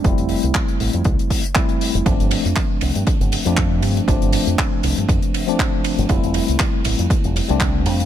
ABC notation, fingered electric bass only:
X:1
M:4/4
L:1/16
Q:"Swing 16ths" 1/4=119
K:F
V:1 name="Fingered electric bass" clef=bass
F,,, F,,, z C,, z2 A,,, F,, C,, z6 F,,, | G,,, G,,, z F,, z2 C,, G,, z G,,, z F,,3 G,, z | G,,, G,,, z F,, z2 C,, G,, F,, z6 G,,, | F,,, F,,, z C,, z2 A,,, F,, z F,,, z C,,3 F,, z |]